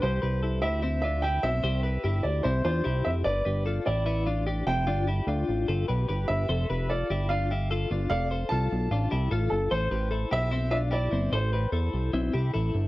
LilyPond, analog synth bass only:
\new Staff \with { instrumentName = "Analog synth bass" } { \clef bass \time 4/4 \key f \lydian \tempo 4 = 149 c,8 c,4 d,2 b,,8 | c,4 g,,8 d,8 c,8 e,8 c,8 f,,8 | g,,8 g,,4 a,,2 f,,8 | g,,4 d,8 a,,8 g,,8 b,,8 g,,8 g,,8 |
f,,8 f,,4 g,,2 g,,8 | f,,4 c,8 b,,8 a,,8 c,8 a,,8 g,,8 | a,,8 a,,4 b,,2 g,,8 | a,,4 e,8 c,8 b,,8 c,8 a,,8 g,,8 | }